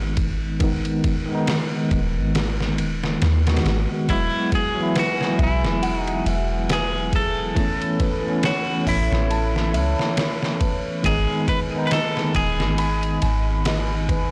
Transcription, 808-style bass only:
Already playing: G#1
1.91 D#1
2.17 G#1
2.79 D#1
3.22 D#2
3.65 G#1
4.09 E1
5.39 B1
5.63 E1
6.26 E1
8.87 A1
9.12 A1
9.73 C#2
11.04 G#1
12.35 D#1
12.60 G#1
13.23 G#1

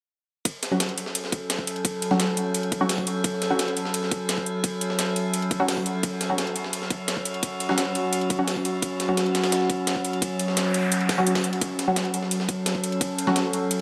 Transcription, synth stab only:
0.71 F#3 C#4 F#4
2.11 F#3 C#4 F#4
2.81 F#3 C#4 F#4
3.50 F#3 C#4 F#4
5.60 F#3 C#4 F#4
6.30 F#3 C#4 F#4
7.69 F#3 C#4 F#4
8.39 F#3 C#4 F#4
9.09 F#3 C#4 F#4
11.18 F#3 C#4 F#4
11.88 F#3 C#4 F#4
13.27 F#3 C#4 F#4

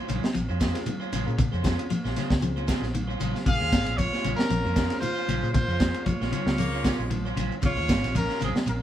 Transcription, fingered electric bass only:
0.10 A#1
0.35 A#1
0.50 F2
1.13 A#1
1.27 A#2
1.53 F2
2.05 A#1
2.31 C#2
2.82 A#1
3.20 A#1
3.46 A#1
3.61 D#2
3.72 G#1
3.87 A#1
4.25 A#1
4.51 A#1
4.65 F2
5.28 A#1
5.43 A#2
5.68 F2
6.21 A#1
6.46 C#2
6.99 A#1
7.36 A#1
7.63 A#1
7.77 D#2
7.89 G#1
8.04 A#1
8.42 A#1
8.56 muted fingered electric bass stroke
8.69 A#1

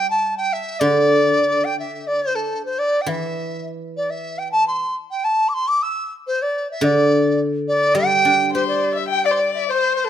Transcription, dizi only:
0.10 A5
0.37 G5
0.52 E5
0.79 D5
1.64 G5
1.79 E5
2.07 D5
2.22 C5
2.35 A4
2.65 C5
2.78 D5
3.01 G5
3.08 E5
3.96 D5
4.10 E5
4.38 G5
4.51 A5
4.67 C6
5.10 G5
5.24 A5
5.48 D6
5.53 C6
5.67 D6
5.82 E6
6.27 C5
6.42 D5
6.71 E5
6.83 D5
7.67 D5
7.95 G5
8.54 C5
8.67 D5
8.97 E5
9.10 G5
9.25 D5
9.54 E5
9.68 C5
9.95 C5
10.04 A4

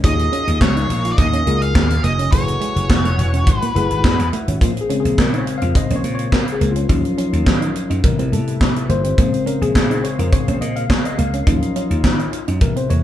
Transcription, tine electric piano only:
0.04 F4 F#4 G#4 C#5
1.47 F4 F#4 G#4 A#4
2.32 E4 G#4 A4 B4
3.75 E4 G#4 A4 B4 B5
4.04 G#5
4.32 E5
4.62 F4
4.81 G#4
4.89 C#3 G#3 C4
5.00 G#4
5.19 A#4
5.38 C#5
5.58 F5
5.76 D#5
5.96 C#5
6.15 C#5
6.33 A#4
6.52 G#4
6.71 F4
6.89 F3 F#3 C#4
8.03 C3 G3 B3 A#4
8.33 A4
8.90 C5
9.18 C#3 G#3 C4
9.47 A#4
9.62 G#4
10.04 C#5
10.19 A#4
10.32 C#5
10.61 D#5
10.76 F5
10.90 C#5
11.05 D#5
11.19 F5
11.46 F3 F#3 C#4
12.61 C3 G3 B3 A#4
12.76 C5
12.90 C#5

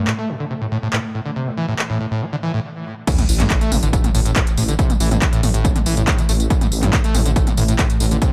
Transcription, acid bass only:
0.07 A2
0.18 A3
0.29 A2
0.40 D3
0.50 C3
0.61 A2
0.72 A2
0.83 A2
0.93 A2
1.14 A2
1.25 D3
1.36 C3
1.47 A2
1.57 E3
1.68 A2
1.90 A2
2.00 A2
2.11 A2
2.22 A3
2.32 D3
2.43 E3
2.54 A2
3.07 A2
3.18 A2
3.40 G2
3.50 A2
3.61 A3
3.72 A2
3.83 D3
3.93 C3
4.04 A2
4.15 A2
4.25 A2
4.36 A2
4.57 A2
4.68 D3
4.79 C3
4.90 A2
5.00 E3
5.11 A2
5.33 A2
5.43 A2
5.54 A2
5.65 A3
5.76 D3
5.86 E3
5.97 A2
6.07 A2
6.18 D3
6.29 A3
6.50 A2
6.61 A2
6.83 G2
6.93 A2
7.04 A3
7.15 A2
7.26 D3
7.36 C3
7.47 A2
7.57 A2
7.68 A2
7.79 A2
8.00 A2
8.11 D3
8.22 C3

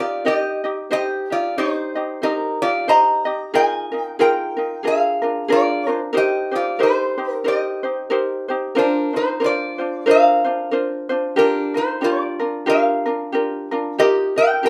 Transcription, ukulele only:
0.00 D#4 G4
0.25 D#4 G4 A#4 D#5
0.64 D#4 G4 D#5
0.91 D#4 G4 C5 D#5
1.30 D#4 G4
1.58 D#4 G4 C5 D#5
1.95 D#4 G4 D#5
2.22 D#4 G4 C5 D#5
2.62 D#4 G4
2.88 D#4 G4 C5 D#5
3.25 D#4 G4 D#5
3.54 D#4 F4 G#4 A#4
3.92 D#4 F4 A#4
4.19 D#4 F4 G#4 A#4
4.57 D#4 F4 A#4
4.83 D4 F4 G#4 A#4
5.22 D4 F4 A#4
5.48 D4 F4 G#4 A#4
5.87 D4 F4 A#4
6.13 D#4 G4 A#4 C5
6.51 D#4 G4 C5
6.79 D#4 G4 A#4 C5
7.18 D#4 G4 C5
7.44 D#4 G4 A#4 C5
7.83 D#4 G4 C5
8.10 D#4 G4 A#4 C5
8.48 D#4 G4 C5
8.75 D4 F4 A#4 C5
9.13 F4 C5
9.40 D4 F4 A#4 C5
9.78 D4 F4 C5
10.06 D4 F4 A#4 C5
10.44 D4 F4 C5
10.71 D4 F4 A#4 C5
11.09 D4 F4 C5
11.36 D4 F4 G4 A#4
11.74 F4 A#4
12.01 D4 F4 G4 A#4
12.39 D4 F4 A#4
12.66 D4 F4 G4 A#4
13.06 D4 F4 A#4
13.32 D4 F4 G4 A#4
13.71 D4 F4 A#4
13.98 D#4 F4 G4 A#4
14.36 D#4 F4 A#4
14.63 D#4 F4 G4 A#4

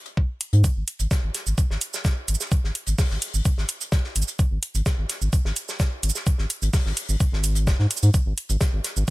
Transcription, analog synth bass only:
0.53 G#2
0.76 G#1
1.00 G#1
1.23 G#1
1.47 G#1
1.70 G#1
2.28 G#1
2.64 G#1
2.87 G#1
3.11 G#1
3.34 G#1
3.58 G#1
4.16 G#1
4.51 G#1
4.75 G#1
4.98 G#1
5.22 G#1
5.45 G#1
6.03 G#1
6.39 G#1
6.62 G#1
6.86 G#1
7.09 G#1
7.32 G#1
7.67 F#1
7.79 G#2
8.03 G#2
8.26 G#1
8.50 G#1
8.73 G#1
8.97 G#1

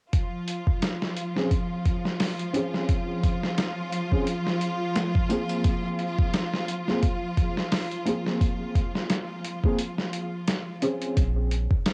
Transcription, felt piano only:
1.36 C4 C#4 G#4
2.53 C4 C#4 G#4
4.12 C4 C#4 G#4
5.29 A#3 C4 G#4
6.88 A#3 C4 G#4
8.05 A#3 C4 G#4
9.63 A#3 C4 G#4
10.82 C4 C#4 G#4

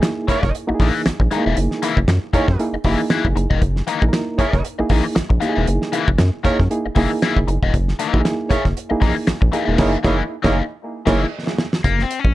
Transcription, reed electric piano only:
Already playing: A#3 D#4 E4 G#4
0.67 A#3 D#4 E4 F#4
0.74 G#4
1.31 G#3 D#4 E4 G#4
1.37 A#3
2.34 A#3 D#4 E4 G#4
2.59 A#3 D#4 E4 G#4
2.85 A#3 D#4 E4 G4
2.92 G#4
4.02 A#3 D#4 E4 G#4
4.09 A#4
4.79 A#3 D#4 E4 G#4
5.42 A#3 D#4 E4 G4
5.49 G#4
6.45 A#3 D#4 E4 G#4
6.70 A#3 D#4 E4 G#4
6.96 A#3 D#4 E4 G#4
8.14 A#3 D#4 E4 F#4
8.20 G#4
8.91 A#3 D#4 E4 G#4
9.53 A#3 D#4 E4 G#4
9.78 A#3 D#4 E4 G#4
10.04 A#3 D#4 E4 G#4
10.45 A#3 D#4 E4 G#4
11.07 A#3 D#4 E4 G#4

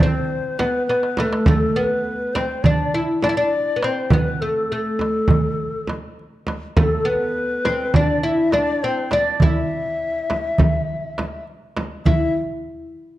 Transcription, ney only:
0.00 C5
0.58 B4
0.87 B4
1.47 A4
1.76 B4
2.33 C5
2.63 D5
3.22 D5
3.38 D5
3.82 C5
4.11 B4
4.41 A4
4.71 A4 A#4
6.76 A#4
6.81 A4
7.06 B4
7.95 D5
8.25 E5
8.52 D5
8.83 C5
9.11 E5
9.16 D5
9.42 E5
12.06 E5

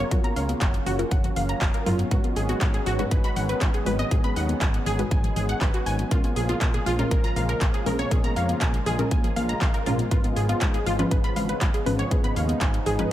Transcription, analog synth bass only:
0.11 F#2
0.36 C#2
0.61 F#1
0.86 F#1
1.11 F#1
1.36 F#1
1.61 F#1
1.86 F#1
2.11 G#1
2.36 G#1
2.61 G#2
2.86 G#1
3.11 G#1
3.36 G#1
3.61 G#1
3.86 G#1
4.11 G#2
4.36 D#2
4.61 G#1
4.86 G#1
5.11 G#1
5.36 G#1
5.61 G#1
5.86 G#1
6.11 A#1
6.36 A#1
6.61 A#2
6.86 A#1
7.11 A#1
7.36 A#1
7.61 A#1
7.86 A#1
8.11 A#2
8.36 F2
8.61 A#1
8.86 A#1
9.11 A#1
9.36 A#1
9.61 A#1
9.86 A#1
10.11 G#1
10.36 G#1
10.61 G#2
10.86 G#1
11.11 G#1
11.36 G#1
11.61 G#1
11.86 G#1
12.11 G#2
12.36 D#2
12.61 G#1
12.86 G#1

